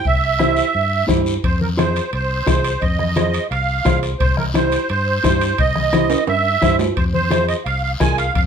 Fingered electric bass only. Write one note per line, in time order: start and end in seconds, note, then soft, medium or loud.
0.05 0.61 C2 medium
0.75 1.02 G2 medium
1.09 1.37 G2 medium
1.44 1.99 F2 medium
2.13 2.41 C2 medium
2.48 2.75 C2 medium
2.82 3.37 F2 medium
3.51 3.79 C2 medium
3.86 4.14 C2 medium
4.20 4.76 C2 medium
4.90 5.18 G2 medium
5.24 5.52 G2 medium
5.59 6.14 C2 medium
6.28 6.56 G2 medium
6.63 6.90 G2 medium
6.97 7.53 F2 medium
7.66 7.94 C2 medium
8.01 8.29 C2 medium
8.35 8.46 F2 medium